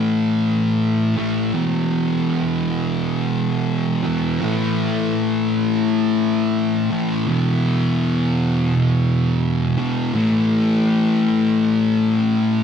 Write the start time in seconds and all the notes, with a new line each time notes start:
Already playing: A2 E3 A3
1.17 A2 E3 A3
1.53 E2 B2 E3
4.04 E2 B2 E3
4.41 A2 E3 A3
6.91 A2 E3 A3
7.27 E2 B2 E3
9.77 E2 B2 E3
10.14 A2 E3 A3